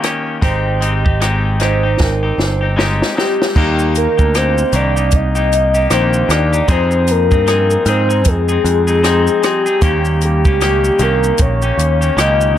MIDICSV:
0, 0, Header, 1, 6, 480
1, 0, Start_track
1, 0, Key_signature, -3, "major"
1, 0, Tempo, 783290
1, 259, Time_signature, 4, 2, 24, 8
1, 7710, End_track
2, 0, Start_track
2, 0, Title_t, "Soft synth lead"
2, 0, Program_c, 0, 80
2, 1954, Note_on_c, 0, 67, 85
2, 2171, Note_off_c, 0, 67, 0
2, 2189, Note_on_c, 0, 67, 98
2, 2408, Note_off_c, 0, 67, 0
2, 2435, Note_on_c, 0, 70, 93
2, 2674, Note_on_c, 0, 72, 107
2, 2683, Note_off_c, 0, 70, 0
2, 2916, Note_on_c, 0, 74, 105
2, 2925, Note_off_c, 0, 72, 0
2, 3162, Note_on_c, 0, 75, 118
2, 3171, Note_off_c, 0, 74, 0
2, 3636, Note_on_c, 0, 72, 110
2, 3645, Note_off_c, 0, 75, 0
2, 3872, Note_on_c, 0, 74, 112
2, 3881, Note_off_c, 0, 72, 0
2, 4116, Note_on_c, 0, 72, 101
2, 4126, Note_off_c, 0, 74, 0
2, 4358, Note_on_c, 0, 70, 118
2, 4367, Note_off_c, 0, 72, 0
2, 4829, Note_off_c, 0, 70, 0
2, 4837, Note_on_c, 0, 72, 96
2, 5069, Note_on_c, 0, 68, 103
2, 5079, Note_off_c, 0, 72, 0
2, 5795, Note_on_c, 0, 67, 105
2, 5804, Note_off_c, 0, 68, 0
2, 6268, Note_off_c, 0, 67, 0
2, 6281, Note_on_c, 0, 67, 94
2, 6757, Note_on_c, 0, 70, 94
2, 6766, Note_off_c, 0, 67, 0
2, 6995, Note_on_c, 0, 73, 105
2, 7004, Note_off_c, 0, 70, 0
2, 7478, Note_on_c, 0, 75, 113
2, 7487, Note_off_c, 0, 73, 0
2, 7710, Note_off_c, 0, 75, 0
2, 7710, End_track
3, 0, Start_track
3, 0, Title_t, "Vibraphone"
3, 0, Program_c, 1, 11
3, 259, Note_on_c, 1, 79, 97
3, 261, Note_on_c, 1, 72, 78
3, 487, Note_off_c, 1, 79, 0
3, 488, Note_off_c, 1, 72, 0
3, 500, Note_on_c, 1, 75, 63
3, 503, Note_on_c, 1, 67, 52
3, 728, Note_off_c, 1, 75, 0
3, 729, Note_off_c, 1, 67, 0
3, 980, Note_on_c, 1, 72, 64
3, 986, Note_on_c, 1, 63, 52
3, 1208, Note_off_c, 1, 72, 0
3, 1211, Note_off_c, 1, 63, 0
3, 1222, Note_on_c, 1, 70, 67
3, 1223, Note_on_c, 1, 63, 53
3, 1449, Note_off_c, 1, 70, 0
3, 1450, Note_off_c, 1, 63, 0
3, 1462, Note_on_c, 1, 72, 64
3, 1466, Note_on_c, 1, 63, 46
3, 1598, Note_off_c, 1, 72, 0
3, 1600, Note_off_c, 1, 63, 0
3, 7710, End_track
4, 0, Start_track
4, 0, Title_t, "Clean electric guitar"
4, 0, Program_c, 2, 27
4, 13, Note_on_c, 2, 51, 60
4, 20, Note_on_c, 2, 58, 57
4, 25, Note_on_c, 2, 61, 60
4, 30, Note_on_c, 2, 67, 65
4, 251, Note_off_c, 2, 51, 0
4, 254, Note_on_c, 2, 56, 71
4, 255, Note_off_c, 2, 58, 0
4, 257, Note_off_c, 2, 67, 0
4, 258, Note_on_c, 2, 60, 83
4, 259, Note_off_c, 2, 61, 0
4, 261, Note_on_c, 2, 63, 96
4, 265, Note_on_c, 2, 67, 85
4, 486, Note_off_c, 2, 56, 0
4, 492, Note_off_c, 2, 60, 0
4, 493, Note_on_c, 2, 56, 65
4, 496, Note_off_c, 2, 63, 0
4, 500, Note_on_c, 2, 60, 62
4, 502, Note_off_c, 2, 67, 0
4, 503, Note_on_c, 2, 63, 63
4, 510, Note_on_c, 2, 67, 67
4, 634, Note_off_c, 2, 67, 0
4, 640, Note_off_c, 2, 56, 0
4, 641, Note_on_c, 2, 67, 53
4, 644, Note_off_c, 2, 60, 0
4, 645, Note_off_c, 2, 63, 0
4, 652, Note_on_c, 2, 63, 48
4, 659, Note_on_c, 2, 60, 44
4, 737, Note_off_c, 2, 60, 0
4, 738, Note_off_c, 2, 67, 0
4, 738, Note_on_c, 2, 56, 70
4, 739, Note_off_c, 2, 63, 0
4, 744, Note_on_c, 2, 60, 69
4, 746, Note_on_c, 2, 63, 79
4, 748, Note_on_c, 2, 67, 81
4, 971, Note_off_c, 2, 56, 0
4, 979, Note_off_c, 2, 60, 0
4, 979, Note_on_c, 2, 56, 63
4, 983, Note_off_c, 2, 63, 0
4, 984, Note_off_c, 2, 67, 0
4, 987, Note_on_c, 2, 60, 60
4, 991, Note_on_c, 2, 63, 66
4, 996, Note_on_c, 2, 67, 74
4, 1115, Note_off_c, 2, 67, 0
4, 1123, Note_off_c, 2, 56, 0
4, 1123, Note_on_c, 2, 67, 53
4, 1125, Note_off_c, 2, 63, 0
4, 1127, Note_off_c, 2, 60, 0
4, 1133, Note_on_c, 2, 63, 44
4, 1138, Note_on_c, 2, 60, 41
4, 1358, Note_off_c, 2, 67, 0
4, 1366, Note_off_c, 2, 63, 0
4, 1366, Note_on_c, 2, 67, 55
4, 1371, Note_off_c, 2, 60, 0
4, 1373, Note_on_c, 2, 63, 46
4, 1382, Note_on_c, 2, 60, 40
4, 1591, Note_off_c, 2, 67, 0
4, 1599, Note_on_c, 2, 67, 53
4, 1600, Note_off_c, 2, 63, 0
4, 1608, Note_off_c, 2, 60, 0
4, 1608, Note_on_c, 2, 63, 48
4, 1615, Note_on_c, 2, 60, 44
4, 1690, Note_off_c, 2, 60, 0
4, 1694, Note_on_c, 2, 56, 80
4, 1695, Note_off_c, 2, 63, 0
4, 1697, Note_off_c, 2, 67, 0
4, 1698, Note_on_c, 2, 60, 74
4, 1703, Note_on_c, 2, 63, 89
4, 1706, Note_on_c, 2, 67, 79
4, 1925, Note_off_c, 2, 56, 0
4, 1932, Note_off_c, 2, 60, 0
4, 1932, Note_on_c, 2, 56, 60
4, 1937, Note_off_c, 2, 63, 0
4, 1940, Note_on_c, 2, 60, 60
4, 1943, Note_off_c, 2, 67, 0
4, 1944, Note_on_c, 2, 63, 57
4, 1950, Note_on_c, 2, 67, 67
4, 2176, Note_off_c, 2, 56, 0
4, 2177, Note_on_c, 2, 51, 75
4, 2179, Note_off_c, 2, 63, 0
4, 2180, Note_off_c, 2, 60, 0
4, 2183, Note_off_c, 2, 67, 0
4, 2183, Note_on_c, 2, 58, 77
4, 2186, Note_on_c, 2, 63, 83
4, 2191, Note_on_c, 2, 67, 83
4, 2550, Note_off_c, 2, 67, 0
4, 2558, Note_on_c, 2, 67, 45
4, 2560, Note_off_c, 2, 63, 0
4, 2563, Note_off_c, 2, 51, 0
4, 2566, Note_off_c, 2, 58, 0
4, 2567, Note_on_c, 2, 63, 47
4, 2577, Note_on_c, 2, 58, 41
4, 2654, Note_off_c, 2, 58, 0
4, 2656, Note_off_c, 2, 63, 0
4, 2657, Note_off_c, 2, 67, 0
4, 2661, Note_on_c, 2, 58, 70
4, 2663, Note_on_c, 2, 63, 67
4, 2666, Note_on_c, 2, 67, 79
4, 2895, Note_on_c, 2, 51, 57
4, 2898, Note_off_c, 2, 58, 0
4, 2902, Note_off_c, 2, 63, 0
4, 2903, Note_off_c, 2, 67, 0
4, 2905, Note_on_c, 2, 58, 63
4, 2910, Note_on_c, 2, 63, 59
4, 2914, Note_on_c, 2, 67, 64
4, 3032, Note_off_c, 2, 67, 0
4, 3039, Note_on_c, 2, 67, 44
4, 3041, Note_off_c, 2, 63, 0
4, 3042, Note_off_c, 2, 51, 0
4, 3047, Note_off_c, 2, 58, 0
4, 3049, Note_on_c, 2, 63, 39
4, 3058, Note_on_c, 2, 58, 33
4, 3272, Note_off_c, 2, 67, 0
4, 3280, Note_on_c, 2, 67, 52
4, 3281, Note_off_c, 2, 63, 0
4, 3288, Note_on_c, 2, 63, 51
4, 3291, Note_off_c, 2, 58, 0
4, 3297, Note_on_c, 2, 58, 40
4, 3512, Note_off_c, 2, 67, 0
4, 3520, Note_on_c, 2, 67, 47
4, 3522, Note_off_c, 2, 63, 0
4, 3529, Note_off_c, 2, 58, 0
4, 3529, Note_on_c, 2, 63, 42
4, 3537, Note_on_c, 2, 58, 39
4, 3614, Note_off_c, 2, 58, 0
4, 3618, Note_off_c, 2, 67, 0
4, 3618, Note_on_c, 2, 51, 73
4, 3619, Note_off_c, 2, 63, 0
4, 3621, Note_on_c, 2, 58, 74
4, 3626, Note_on_c, 2, 63, 81
4, 3629, Note_on_c, 2, 67, 90
4, 3843, Note_off_c, 2, 51, 0
4, 3848, Note_off_c, 2, 58, 0
4, 3850, Note_on_c, 2, 51, 53
4, 3854, Note_off_c, 2, 63, 0
4, 3855, Note_on_c, 2, 58, 63
4, 3860, Note_off_c, 2, 67, 0
4, 3861, Note_on_c, 2, 63, 59
4, 3867, Note_on_c, 2, 67, 63
4, 3991, Note_off_c, 2, 67, 0
4, 3998, Note_on_c, 2, 67, 51
4, 3999, Note_off_c, 2, 63, 0
4, 4000, Note_off_c, 2, 51, 0
4, 4002, Note_off_c, 2, 58, 0
4, 4006, Note_on_c, 2, 63, 47
4, 4016, Note_on_c, 2, 58, 41
4, 4093, Note_on_c, 2, 53, 80
4, 4094, Note_off_c, 2, 63, 0
4, 4096, Note_off_c, 2, 58, 0
4, 4097, Note_off_c, 2, 67, 0
4, 4098, Note_on_c, 2, 60, 80
4, 4101, Note_on_c, 2, 63, 79
4, 4106, Note_on_c, 2, 68, 89
4, 4471, Note_off_c, 2, 68, 0
4, 4478, Note_on_c, 2, 68, 50
4, 4480, Note_off_c, 2, 63, 0
4, 4481, Note_off_c, 2, 53, 0
4, 4484, Note_off_c, 2, 60, 0
4, 4487, Note_on_c, 2, 63, 45
4, 4494, Note_on_c, 2, 60, 43
4, 4570, Note_off_c, 2, 60, 0
4, 4572, Note_on_c, 2, 53, 62
4, 4574, Note_off_c, 2, 63, 0
4, 4577, Note_on_c, 2, 60, 68
4, 4578, Note_off_c, 2, 68, 0
4, 4582, Note_on_c, 2, 63, 77
4, 4585, Note_on_c, 2, 68, 72
4, 4808, Note_off_c, 2, 53, 0
4, 4815, Note_off_c, 2, 60, 0
4, 4816, Note_on_c, 2, 53, 57
4, 4820, Note_off_c, 2, 63, 0
4, 4822, Note_on_c, 2, 60, 64
4, 4823, Note_off_c, 2, 68, 0
4, 4827, Note_on_c, 2, 63, 60
4, 4832, Note_on_c, 2, 68, 69
4, 4949, Note_off_c, 2, 68, 0
4, 4957, Note_on_c, 2, 68, 47
4, 4962, Note_off_c, 2, 63, 0
4, 4963, Note_off_c, 2, 53, 0
4, 4966, Note_off_c, 2, 60, 0
4, 4969, Note_on_c, 2, 63, 41
4, 4975, Note_on_c, 2, 60, 36
4, 5193, Note_off_c, 2, 68, 0
4, 5200, Note_on_c, 2, 68, 53
4, 5201, Note_off_c, 2, 63, 0
4, 5208, Note_on_c, 2, 63, 43
4, 5210, Note_off_c, 2, 60, 0
4, 5218, Note_on_c, 2, 60, 45
4, 5429, Note_off_c, 2, 68, 0
4, 5436, Note_on_c, 2, 68, 48
4, 5438, Note_off_c, 2, 63, 0
4, 5445, Note_off_c, 2, 60, 0
4, 5446, Note_on_c, 2, 63, 44
4, 5452, Note_on_c, 2, 60, 39
4, 5532, Note_off_c, 2, 60, 0
4, 5533, Note_on_c, 2, 53, 82
4, 5535, Note_off_c, 2, 63, 0
4, 5537, Note_off_c, 2, 68, 0
4, 5539, Note_on_c, 2, 60, 83
4, 5542, Note_on_c, 2, 63, 90
4, 5546, Note_on_c, 2, 68, 85
4, 5767, Note_off_c, 2, 53, 0
4, 5774, Note_off_c, 2, 60, 0
4, 5774, Note_on_c, 2, 53, 59
4, 5779, Note_off_c, 2, 63, 0
4, 5781, Note_on_c, 2, 60, 56
4, 5784, Note_off_c, 2, 68, 0
4, 5786, Note_on_c, 2, 63, 61
4, 5790, Note_on_c, 2, 68, 62
4, 5912, Note_off_c, 2, 68, 0
4, 5919, Note_on_c, 2, 68, 62
4, 5921, Note_off_c, 2, 63, 0
4, 5922, Note_off_c, 2, 53, 0
4, 5925, Note_off_c, 2, 60, 0
4, 5929, Note_on_c, 2, 63, 49
4, 5938, Note_on_c, 2, 60, 45
4, 6017, Note_on_c, 2, 51, 75
4, 6018, Note_off_c, 2, 68, 0
4, 6020, Note_off_c, 2, 60, 0
4, 6023, Note_off_c, 2, 63, 0
4, 6023, Note_on_c, 2, 58, 74
4, 6026, Note_on_c, 2, 61, 76
4, 6030, Note_on_c, 2, 67, 83
4, 6396, Note_off_c, 2, 67, 0
4, 6403, Note_off_c, 2, 51, 0
4, 6404, Note_off_c, 2, 61, 0
4, 6404, Note_on_c, 2, 67, 57
4, 6406, Note_off_c, 2, 58, 0
4, 6411, Note_on_c, 2, 61, 46
4, 6418, Note_on_c, 2, 58, 39
4, 6497, Note_off_c, 2, 58, 0
4, 6499, Note_on_c, 2, 51, 61
4, 6500, Note_off_c, 2, 61, 0
4, 6501, Note_off_c, 2, 67, 0
4, 6505, Note_on_c, 2, 58, 70
4, 6507, Note_on_c, 2, 61, 76
4, 6510, Note_on_c, 2, 67, 75
4, 6728, Note_off_c, 2, 51, 0
4, 6733, Note_off_c, 2, 58, 0
4, 6735, Note_on_c, 2, 51, 66
4, 6739, Note_off_c, 2, 61, 0
4, 6741, Note_on_c, 2, 58, 64
4, 6744, Note_off_c, 2, 67, 0
4, 6746, Note_on_c, 2, 61, 64
4, 6752, Note_on_c, 2, 67, 61
4, 7116, Note_off_c, 2, 67, 0
4, 7123, Note_off_c, 2, 51, 0
4, 7123, Note_on_c, 2, 67, 52
4, 7125, Note_off_c, 2, 58, 0
4, 7125, Note_off_c, 2, 61, 0
4, 7133, Note_on_c, 2, 61, 50
4, 7141, Note_on_c, 2, 58, 47
4, 7352, Note_off_c, 2, 67, 0
4, 7360, Note_on_c, 2, 67, 44
4, 7361, Note_off_c, 2, 61, 0
4, 7368, Note_off_c, 2, 58, 0
4, 7368, Note_on_c, 2, 61, 43
4, 7375, Note_on_c, 2, 58, 42
4, 7455, Note_off_c, 2, 58, 0
4, 7457, Note_on_c, 2, 51, 76
4, 7459, Note_off_c, 2, 61, 0
4, 7459, Note_off_c, 2, 67, 0
4, 7463, Note_on_c, 2, 58, 73
4, 7466, Note_on_c, 2, 61, 76
4, 7471, Note_on_c, 2, 67, 86
4, 7687, Note_off_c, 2, 51, 0
4, 7695, Note_off_c, 2, 58, 0
4, 7701, Note_off_c, 2, 61, 0
4, 7704, Note_off_c, 2, 67, 0
4, 7710, End_track
5, 0, Start_track
5, 0, Title_t, "Picked electric bass"
5, 0, Program_c, 3, 34
5, 259, Note_on_c, 3, 32, 87
5, 1195, Note_off_c, 3, 32, 0
5, 1226, Note_on_c, 3, 32, 91
5, 1415, Note_off_c, 3, 32, 0
5, 1459, Note_on_c, 3, 31, 75
5, 1843, Note_off_c, 3, 31, 0
5, 2181, Note_on_c, 3, 39, 102
5, 2488, Note_off_c, 3, 39, 0
5, 2568, Note_on_c, 3, 38, 78
5, 2835, Note_off_c, 3, 38, 0
5, 2898, Note_on_c, 3, 36, 96
5, 3595, Note_off_c, 3, 36, 0
5, 3618, Note_on_c, 3, 34, 75
5, 3811, Note_off_c, 3, 34, 0
5, 3854, Note_on_c, 3, 39, 82
5, 4049, Note_off_c, 3, 39, 0
5, 4095, Note_on_c, 3, 41, 93
5, 4485, Note_off_c, 3, 41, 0
5, 4485, Note_on_c, 3, 43, 83
5, 4754, Note_off_c, 3, 43, 0
5, 4816, Note_on_c, 3, 44, 88
5, 5059, Note_off_c, 3, 44, 0
5, 5059, Note_on_c, 3, 41, 85
5, 5252, Note_off_c, 3, 41, 0
5, 5298, Note_on_c, 3, 41, 89
5, 5683, Note_off_c, 3, 41, 0
5, 6017, Note_on_c, 3, 39, 100
5, 6406, Note_off_c, 3, 39, 0
5, 6406, Note_on_c, 3, 37, 91
5, 6675, Note_off_c, 3, 37, 0
5, 6737, Note_on_c, 3, 36, 88
5, 6931, Note_off_c, 3, 36, 0
5, 6984, Note_on_c, 3, 34, 89
5, 7175, Note_off_c, 3, 34, 0
5, 7216, Note_on_c, 3, 39, 78
5, 7410, Note_off_c, 3, 39, 0
5, 7456, Note_on_c, 3, 37, 81
5, 7699, Note_off_c, 3, 37, 0
5, 7710, End_track
6, 0, Start_track
6, 0, Title_t, "Drums"
6, 21, Note_on_c, 9, 42, 48
6, 26, Note_on_c, 9, 37, 77
6, 82, Note_off_c, 9, 42, 0
6, 87, Note_off_c, 9, 37, 0
6, 260, Note_on_c, 9, 36, 99
6, 260, Note_on_c, 9, 42, 59
6, 321, Note_off_c, 9, 36, 0
6, 321, Note_off_c, 9, 42, 0
6, 503, Note_on_c, 9, 42, 47
6, 564, Note_off_c, 9, 42, 0
6, 648, Note_on_c, 9, 36, 75
6, 709, Note_off_c, 9, 36, 0
6, 744, Note_on_c, 9, 42, 55
6, 747, Note_on_c, 9, 37, 70
6, 805, Note_off_c, 9, 42, 0
6, 809, Note_off_c, 9, 37, 0
6, 978, Note_on_c, 9, 42, 43
6, 988, Note_on_c, 9, 37, 68
6, 1040, Note_off_c, 9, 42, 0
6, 1050, Note_off_c, 9, 37, 0
6, 1224, Note_on_c, 9, 36, 68
6, 1227, Note_on_c, 9, 38, 46
6, 1286, Note_off_c, 9, 36, 0
6, 1288, Note_off_c, 9, 38, 0
6, 1467, Note_on_c, 9, 38, 59
6, 1529, Note_off_c, 9, 38, 0
6, 1709, Note_on_c, 9, 38, 77
6, 1770, Note_off_c, 9, 38, 0
6, 1852, Note_on_c, 9, 38, 64
6, 1914, Note_off_c, 9, 38, 0
6, 1951, Note_on_c, 9, 38, 76
6, 2012, Note_off_c, 9, 38, 0
6, 2094, Note_on_c, 9, 38, 86
6, 2155, Note_off_c, 9, 38, 0
6, 2182, Note_on_c, 9, 36, 95
6, 2183, Note_on_c, 9, 49, 79
6, 2243, Note_off_c, 9, 36, 0
6, 2245, Note_off_c, 9, 49, 0
6, 2323, Note_on_c, 9, 82, 39
6, 2384, Note_off_c, 9, 82, 0
6, 2423, Note_on_c, 9, 42, 51
6, 2423, Note_on_c, 9, 82, 48
6, 2484, Note_off_c, 9, 42, 0
6, 2484, Note_off_c, 9, 82, 0
6, 2568, Note_on_c, 9, 36, 84
6, 2568, Note_on_c, 9, 82, 50
6, 2629, Note_off_c, 9, 36, 0
6, 2629, Note_off_c, 9, 82, 0
6, 2664, Note_on_c, 9, 42, 54
6, 2664, Note_on_c, 9, 82, 58
6, 2667, Note_on_c, 9, 37, 81
6, 2725, Note_off_c, 9, 42, 0
6, 2725, Note_off_c, 9, 82, 0
6, 2729, Note_off_c, 9, 37, 0
6, 2806, Note_on_c, 9, 82, 49
6, 2868, Note_off_c, 9, 82, 0
6, 2897, Note_on_c, 9, 42, 50
6, 2897, Note_on_c, 9, 82, 48
6, 2958, Note_off_c, 9, 42, 0
6, 2958, Note_off_c, 9, 82, 0
6, 3045, Note_on_c, 9, 82, 48
6, 3106, Note_off_c, 9, 82, 0
6, 3134, Note_on_c, 9, 42, 60
6, 3134, Note_on_c, 9, 82, 58
6, 3143, Note_on_c, 9, 36, 74
6, 3195, Note_off_c, 9, 42, 0
6, 3195, Note_off_c, 9, 82, 0
6, 3204, Note_off_c, 9, 36, 0
6, 3281, Note_on_c, 9, 82, 52
6, 3342, Note_off_c, 9, 82, 0
6, 3386, Note_on_c, 9, 42, 54
6, 3386, Note_on_c, 9, 82, 52
6, 3448, Note_off_c, 9, 42, 0
6, 3448, Note_off_c, 9, 82, 0
6, 3521, Note_on_c, 9, 82, 46
6, 3582, Note_off_c, 9, 82, 0
6, 3620, Note_on_c, 9, 37, 87
6, 3620, Note_on_c, 9, 42, 67
6, 3620, Note_on_c, 9, 82, 69
6, 3681, Note_off_c, 9, 37, 0
6, 3681, Note_off_c, 9, 42, 0
6, 3681, Note_off_c, 9, 82, 0
6, 3760, Note_on_c, 9, 82, 47
6, 3821, Note_off_c, 9, 82, 0
6, 3861, Note_on_c, 9, 42, 50
6, 3861, Note_on_c, 9, 82, 51
6, 3867, Note_on_c, 9, 37, 92
6, 3923, Note_off_c, 9, 42, 0
6, 3923, Note_off_c, 9, 82, 0
6, 3928, Note_off_c, 9, 37, 0
6, 4004, Note_on_c, 9, 82, 53
6, 4065, Note_off_c, 9, 82, 0
6, 4096, Note_on_c, 9, 42, 64
6, 4096, Note_on_c, 9, 82, 66
6, 4097, Note_on_c, 9, 36, 100
6, 4158, Note_off_c, 9, 42, 0
6, 4158, Note_off_c, 9, 82, 0
6, 4159, Note_off_c, 9, 36, 0
6, 4236, Note_on_c, 9, 82, 47
6, 4297, Note_off_c, 9, 82, 0
6, 4335, Note_on_c, 9, 42, 53
6, 4335, Note_on_c, 9, 82, 52
6, 4397, Note_off_c, 9, 42, 0
6, 4397, Note_off_c, 9, 82, 0
6, 4482, Note_on_c, 9, 82, 47
6, 4484, Note_on_c, 9, 36, 82
6, 4543, Note_off_c, 9, 82, 0
6, 4546, Note_off_c, 9, 36, 0
6, 4580, Note_on_c, 9, 42, 56
6, 4580, Note_on_c, 9, 82, 57
6, 4584, Note_on_c, 9, 37, 82
6, 4642, Note_off_c, 9, 42, 0
6, 4642, Note_off_c, 9, 82, 0
6, 4645, Note_off_c, 9, 37, 0
6, 4722, Note_on_c, 9, 82, 52
6, 4783, Note_off_c, 9, 82, 0
6, 4816, Note_on_c, 9, 42, 51
6, 4816, Note_on_c, 9, 82, 47
6, 4877, Note_off_c, 9, 42, 0
6, 4877, Note_off_c, 9, 82, 0
6, 4966, Note_on_c, 9, 82, 49
6, 5027, Note_off_c, 9, 82, 0
6, 5054, Note_on_c, 9, 42, 62
6, 5054, Note_on_c, 9, 82, 58
6, 5061, Note_on_c, 9, 36, 73
6, 5115, Note_off_c, 9, 42, 0
6, 5115, Note_off_c, 9, 82, 0
6, 5123, Note_off_c, 9, 36, 0
6, 5201, Note_on_c, 9, 82, 52
6, 5262, Note_off_c, 9, 82, 0
6, 5305, Note_on_c, 9, 42, 46
6, 5305, Note_on_c, 9, 82, 49
6, 5366, Note_off_c, 9, 42, 0
6, 5366, Note_off_c, 9, 82, 0
6, 5439, Note_on_c, 9, 82, 48
6, 5501, Note_off_c, 9, 82, 0
6, 5542, Note_on_c, 9, 37, 86
6, 5542, Note_on_c, 9, 42, 70
6, 5542, Note_on_c, 9, 82, 63
6, 5603, Note_off_c, 9, 37, 0
6, 5603, Note_off_c, 9, 42, 0
6, 5603, Note_off_c, 9, 82, 0
6, 5682, Note_on_c, 9, 82, 48
6, 5743, Note_off_c, 9, 82, 0
6, 5781, Note_on_c, 9, 42, 50
6, 5781, Note_on_c, 9, 82, 50
6, 5786, Note_on_c, 9, 37, 86
6, 5842, Note_off_c, 9, 42, 0
6, 5842, Note_off_c, 9, 82, 0
6, 5847, Note_off_c, 9, 37, 0
6, 5921, Note_on_c, 9, 82, 51
6, 5983, Note_off_c, 9, 82, 0
6, 6017, Note_on_c, 9, 42, 65
6, 6017, Note_on_c, 9, 82, 63
6, 6018, Note_on_c, 9, 36, 107
6, 6078, Note_off_c, 9, 42, 0
6, 6078, Note_off_c, 9, 82, 0
6, 6079, Note_off_c, 9, 36, 0
6, 6158, Note_on_c, 9, 82, 41
6, 6219, Note_off_c, 9, 82, 0
6, 6259, Note_on_c, 9, 42, 50
6, 6259, Note_on_c, 9, 82, 52
6, 6321, Note_off_c, 9, 42, 0
6, 6321, Note_off_c, 9, 82, 0
6, 6405, Note_on_c, 9, 82, 43
6, 6406, Note_on_c, 9, 36, 85
6, 6466, Note_off_c, 9, 82, 0
6, 6467, Note_off_c, 9, 36, 0
6, 6503, Note_on_c, 9, 42, 52
6, 6503, Note_on_c, 9, 82, 57
6, 6506, Note_on_c, 9, 37, 86
6, 6564, Note_off_c, 9, 42, 0
6, 6564, Note_off_c, 9, 82, 0
6, 6567, Note_off_c, 9, 37, 0
6, 6645, Note_on_c, 9, 82, 49
6, 6706, Note_off_c, 9, 82, 0
6, 6735, Note_on_c, 9, 42, 45
6, 6735, Note_on_c, 9, 82, 51
6, 6797, Note_off_c, 9, 42, 0
6, 6797, Note_off_c, 9, 82, 0
6, 6886, Note_on_c, 9, 82, 50
6, 6947, Note_off_c, 9, 82, 0
6, 6973, Note_on_c, 9, 42, 61
6, 6973, Note_on_c, 9, 82, 58
6, 6983, Note_on_c, 9, 36, 76
6, 7035, Note_off_c, 9, 42, 0
6, 7035, Note_off_c, 9, 82, 0
6, 7044, Note_off_c, 9, 36, 0
6, 7121, Note_on_c, 9, 82, 49
6, 7183, Note_off_c, 9, 82, 0
6, 7227, Note_on_c, 9, 42, 50
6, 7227, Note_on_c, 9, 82, 52
6, 7288, Note_off_c, 9, 42, 0
6, 7288, Note_off_c, 9, 82, 0
6, 7366, Note_on_c, 9, 82, 51
6, 7427, Note_off_c, 9, 82, 0
6, 7466, Note_on_c, 9, 37, 91
6, 7466, Note_on_c, 9, 42, 63
6, 7466, Note_on_c, 9, 82, 61
6, 7528, Note_off_c, 9, 37, 0
6, 7528, Note_off_c, 9, 42, 0
6, 7528, Note_off_c, 9, 82, 0
6, 7605, Note_on_c, 9, 82, 47
6, 7666, Note_off_c, 9, 82, 0
6, 7710, End_track
0, 0, End_of_file